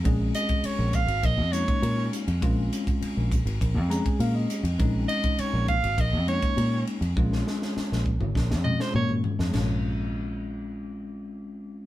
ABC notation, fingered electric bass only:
X:1
M:4/4
L:1/16
Q:1/4=101
K:Bbm
V:1 name="Fingered electric bass" clef=bass
B,,,2 z3 B,,,2 A,,, B,,, F,,2 z B,,2 z F,, | B,,,2 z3 B,,,2 A,,, B,,, F,,2 z B,,2 z F,, | B,,,2 z3 B,,,2 A,,, B,,, F,,2 z B,,2 z F,, | B,,,2 z3 B,,,2 A,,, B,,, F,,2 z B,,2 z F,, |
B,,,16 |]